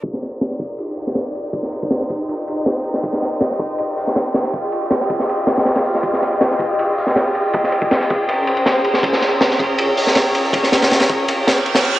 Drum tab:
RD |x-x-x-x-x---x-x-|x-x-x-x-x-xxxxx-|x-x-x-x-x---x-x-|x-x-x-x-x-xxxx--|
HH |----------o-----|----------------|----------o-----|--------------o-|
SD |-oo-oo-----oo---|-o--oo------o--o|-oo-oo-----oo-oo|----oo-o--oooo-o|
BD |o-----o---------|o--o--o---------|o-----o---------|o-----o---------|

RD |x-x-x-x-x---x-x-|x-x-x-x-x-xxxxx-|x-x-x-x-x---x-x-|x-xxxxx-x-xxxxxx|
HH |----------o-----|----------------|----------o-----|----------------|
SD |-oo-oo-----oo---|-o--oo------o--o|-oo-oo-----oo---|-ooooo----o--o--|
BD |o-----o---------|o--o--o---------|o-----o---------|o-----o---------|